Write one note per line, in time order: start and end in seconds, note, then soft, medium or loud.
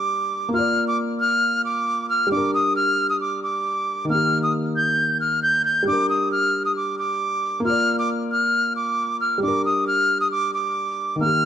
0.00 0.48 G3 medium
0.00 0.50 D4 medium
0.00 0.53 A#4 medium
0.00 0.50 D6 medium
0.49 2.25 A#3 medium
0.54 2.28 F4 medium
0.54 0.85 F6 loud
0.59 2.30 D5 medium
0.88 0.97 D6 medium
1.20 1.62 F6 medium
1.65 2.07 D6 medium
2.09 2.29 F6 medium
2.27 4.03 G3 medium
2.32 4.06 D4 medium
2.32 2.51 D6 medium
2.37 4.08 A#4 medium
2.54 2.74 D#6 medium
2.76 3.07 F6 medium
3.10 3.19 D#6 medium
3.21 3.40 D6 medium
3.43 4.06 D6 medium
4.05 5.81 D#3 medium
4.10 5.84 A#3 medium
4.10 4.41 F6 loud
4.15 5.86 G4 medium
4.43 4.53 D#6 medium
4.76 5.18 G6 medium
5.21 5.40 F6 medium
5.43 5.62 G6 medium
5.65 5.85 G6 medium
5.83 7.59 G3 medium
5.87 7.62 D4 medium
5.87 6.07 D6 loud
5.92 7.64 A#4 medium
6.09 6.29 D#6 medium
6.32 6.63 F6 loud
6.65 6.75 D#6 medium
6.76 6.96 D6 medium
6.99 7.61 D6 medium
7.60 9.37 A#3 medium
7.65 9.39 F4 medium
7.65 7.96 F6 loud
7.70 9.42 D5 medium
7.99 8.08 D6 medium
8.32 8.73 F6 medium
8.76 9.18 D6 medium
9.21 9.40 F6 medium
9.38 11.14 G3 medium
9.43 11.17 D4 medium
9.43 9.62 D6 medium
9.48 11.20 A#4 medium
9.65 9.85 D#6 medium
9.87 10.19 F6 medium
10.21 10.30 D#6 medium
10.31 10.51 D6 medium
10.54 11.17 D6 medium
11.16 11.45 D#3 medium
11.21 11.45 A#3 medium
11.21 11.45 F6 loud
11.26 11.45 G4 medium